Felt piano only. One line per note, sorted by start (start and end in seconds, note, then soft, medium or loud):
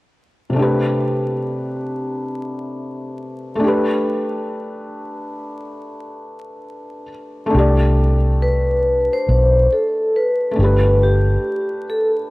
0.50 3.54 C3 medium
0.50 3.54 A3 medium
0.56 3.57 D4 medium
0.56 3.59 G4 medium
0.62 3.60 B4 medium
3.55 7.03 A3 medium
3.60 7.05 D4 medium
3.64 7.07 G4 medium
3.68 7.09 B4 medium
7.46 10.50 A3 medium
7.50 10.52 D4 medium
7.55 10.54 G4 medium
7.59 10.56 D5 medium
10.51 12.30 A3 medium
10.55 12.30 D4 medium
10.60 12.30 G4 medium
10.64 12.30 B4 medium